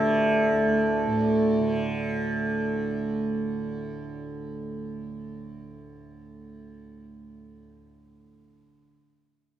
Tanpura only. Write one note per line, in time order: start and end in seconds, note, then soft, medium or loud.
0.00 0.52 D2 medium
0.00 1.07 A2 medium
0.00 1.59 D3 medium
0.52 7.67 D2 medium
1.07 8.22 A2 medium
1.59 8.74 D3 medium